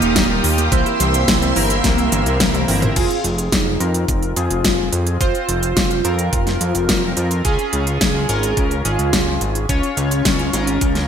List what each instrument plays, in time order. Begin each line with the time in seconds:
Already playing: analog polysynth A#3 D#4 F4 G4, string machine G4 F5 A#5 D#6
0.02 analog synth bass D#1, synth arpeggio sound G4, closed hi-hat
0.16 analog synth bass D#1, synth arpeggio sound D#3, kick, snare, closed hi-hat
0.30 synth arpeggio sound G3
0.44 analog synth bass D#2, synth arpeggio sound D#3, open hi-hat
0.58 synth arpeggio sound A#3, closed hi-hat
0.72 analog synth bass C2, synth arpeggio sound E3, analog polysynth A#3 C4 E4 C5, string machine E5 C6 E6, kick, closed hi-hat
0.86 synth arpeggio sound G4, closed hi-hat
1.00 analog synth bass C2, synth arpeggio sound E3, closed hi-hat
1.14 synth arpeggio sound C5, closed hi-hat
1.28 analog synth bass C2, synth arpeggio sound E3, kick, snare, closed hi-hat
1.42 synth arpeggio sound C4, closed hi-hat
1.56 analog synth bass G1, synth arpeggio sound E3, analog polysynth C4 E4 A#4, open hi-hat
1.70 synth arpeggio sound E5, closed hi-hat
1.84 analog synth bass C2, synth arpeggio sound E3, kick, snare, closed hi-hat
1.98 synth arpeggio sound C4, closed hi-hat
2.12 analog synth bass G1, synth arpeggio sound E3, closed hi-hat
2.26 analog synth bass C2, synth arpeggio sound E4, closed hi-hat
2.40 analog synth bass C2, synth arpeggio sound E3, kick, snare, closed hi-hat, high tom
2.54 synth arpeggio sound G4, closed hi-hat, high tom
2.68 analog synth bass G1, synth arpeggio sound E3, analog polysynth C4 E4 A#4, open hi-hat
2.82 synth arpeggio sound C5, closed hi-hat, mid tom
2.96 analog synth bass F1, analog polysynth C4 F4 G#4, kick, closed hi-hat, crash
3.10 closed hi-hat
3.24 analog synth bass F1, closed hi-hat
3.38 closed hi-hat
3.52 analog synth bass F1, analog polysynth D#4, kick, snare, closed hi-hat
3.80 analog synth bass F2, analog polysynth C4 F4 A#4, closed hi-hat
3.94 closed hi-hat
4.08 analog synth bass F1, kick, closed hi-hat
4.22 closed hi-hat
4.36 analog synth bass F2, analog polysynth C4 F4 G#4, closed hi-hat
4.51 analog synth bass F1, closed hi-hat
4.65 analog synth bass F1, kick, snare, closed hi-hat
4.93 analog synth bass F2, closed hi-hat
5.07 closed hi-hat
5.21 analog synth bass F1, analog polysynth C4 F4 C5, kick, closed hi-hat
5.35 closed hi-hat
5.49 analog synth bass F1, closed hi-hat
5.63 closed hi-hat
5.77 analog synth bass F1, kick, snare, closed hi-hat
5.91 closed hi-hat
6.05 analog synth bass F2, analog polysynth C4 F4 A#4, closed hi-hat
6.19 closed hi-hat
6.33 analog synth bass F1, kick, closed hi-hat
6.47 snare, closed hi-hat
6.61 analog synth bass F2, closed hi-hat
6.75 analog synth bass F1, closed hi-hat
6.89 analog synth bass F1, kick, snare, closed hi-hat
7.17 analog synth bass F2, closed hi-hat
7.31 closed hi-hat
7.45 analog synth bass C#2, analog polysynth C#4 F4 G#4, kick, closed hi-hat
7.59 closed hi-hat
7.73 analog synth bass C#2, closed hi-hat
7.87 closed hi-hat
8.01 analog synth bass C#2, analog polysynth G#4, kick, snare, closed hi-hat
8.29 analog synth bass G#1, analog polysynth C#4 F4 A#4, closed hi-hat
8.43 closed hi-hat
8.57 analog synth bass C#2, kick, closed hi-hat
8.71 closed hi-hat
8.85 analog synth bass G#1, analog polysynth C#4 F4 G#4, closed hi-hat
8.99 analog synth bass C#2, closed hi-hat
9.13 analog synth bass C#2, kick, snare, closed hi-hat
9.41 analog synth bass G#1, closed hi-hat
9.55 closed hi-hat
9.69 analog synth bass C#2, analog polysynth C#4 F4 C#5, kick, closed hi-hat
9.83 closed hi-hat
9.97 analog synth bass C#2, closed hi-hat
10.11 closed hi-hat
10.25 analog synth bass C#2, kick, snare, closed hi-hat
10.39 closed hi-hat
10.53 analog synth bass G#1, analog polysynth C#4 F4 A#4, closed hi-hat
10.67 closed hi-hat
10.81 analog synth bass C#2, kick, closed hi-hat
10.95 snare, closed hi-hat